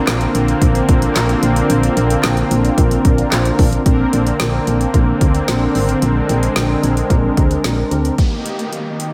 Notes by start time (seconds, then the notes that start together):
Already playing: D3 A#3 C4 D4 F4 A#4
0.07 A#1, snare, clap, closed hi-hat
0.21 closed hi-hat
0.35 A#1, closed hi-hat
0.48 closed hi-hat
0.62 A#1, kick, closed hi-hat
0.75 closed hi-hat
0.89 A#1, kick, closed hi-hat
1.02 closed hi-hat
1.16 A#1, snare, clap, closed hi-hat
1.29 closed hi-hat
1.43 A#1, closed hi-hat
1.56 closed hi-hat
1.70 A#1, closed hi-hat
1.83 closed hi-hat
1.97 A#1, closed hi-hat
2.10 closed hi-hat
2.24 A#1, snare, clap, closed hi-hat
2.37 closed hi-hat
2.51 A#1, closed hi-hat
2.65 closed hi-hat
2.78 A#1, kick, closed hi-hat
2.91 closed hi-hat
3.05 A#1, kick, closed hi-hat
3.18 closed hi-hat
3.32 A#1, snare, clap, closed hi-hat
3.45 closed hi-hat
3.59 A#1, kick, open hi-hat
3.73 closed hi-hat
3.86 A#1 D3 A#3 C4 D4 A#4, kick, closed hi-hat
4.13 A#1, closed hi-hat
4.27 closed hi-hat
4.40 A#1, snare, closed hi-hat
4.67 A#1, closed hi-hat
4.81 closed hi-hat
4.94 A#1, kick, closed hi-hat
5.21 D2, kick, closed hi-hat
5.35 closed hi-hat
5.48 A#1, snare, closed hi-hat
5.75 G#1, open hi-hat
5.89 closed hi-hat
6.02 A#1 G#3, closed hi-hat
6.29 A#1, closed hi-hat
6.43 closed hi-hat
6.56 A#1, snare, closed hi-hat
6.83 A#1, closed hi-hat
6.97 closed hi-hat
7.10 A#1, kick, closed hi-hat
7.37 D2, kick, closed hi-hat
7.51 closed hi-hat
7.64 A#1, snare, closed hi-hat
7.91 D2, closed hi-hat
8.05 closed hi-hat
8.18 D#3 A#3 G4 D#5, kick, closed hi-hat, downlifter
8.46 closed hi-hat
8.59 closed hi-hat
8.73 closed hi-hat
9.00 closed hi-hat